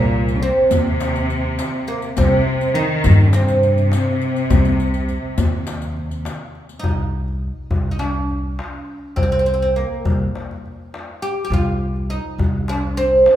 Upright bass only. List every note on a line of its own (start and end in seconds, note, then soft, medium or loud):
0.00 0.50 C2 medium
0.71 1.59 D#2 medium
2.18 2.39 C2 medium
3.06 3.93 G2 loud
4.50 5.16 C2 medium
5.38 6.25 D#2 medium
6.83 7.49 C2 medium
7.70 8.58 C2 medium
9.16 9.82 C2 medium
10.05 10.27 C2 medium
11.50 12.16 C2 medium
12.38 13.26 C2 medium